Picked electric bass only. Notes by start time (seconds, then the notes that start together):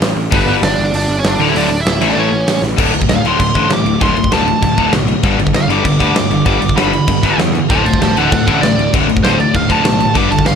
0.01 A1
0.16 A1
0.32 G1
0.62 G1
0.78 G1
0.93 G1
1.08 G1
1.24 G1
1.39 D1
1.55 D1
1.70 D1
1.85 D1
2.01 A1
2.17 A1
2.32 A1
2.48 A1
2.62 A1
2.78 D1
2.93 D1
3.09 D1
3.24 D1
3.40 D1
3.55 A1
3.70 A1
3.85 D1
4.02 D1
4.16 D1
4.32 D1
4.63 D1
4.78 D1
4.93 B1
5.23 G1
5.39 G1
5.54 G1
5.68 G1
5.85 G1
6.01 D2
6.15 D2
6.30 G1
6.46 G1
6.61 G1
6.77 G1
7.08 G1
7.23 G1
7.38 E2
7.70 D1
7.86 D1
8.01 D1
8.17 D1
8.32 D1
8.48 A1
8.63 A1
8.78 D1
8.94 D1
9.10 D1
9.24 D1
9.55 D1
9.70 D1
9.85 B1
10.16 G1
10.31 G1
10.47 G1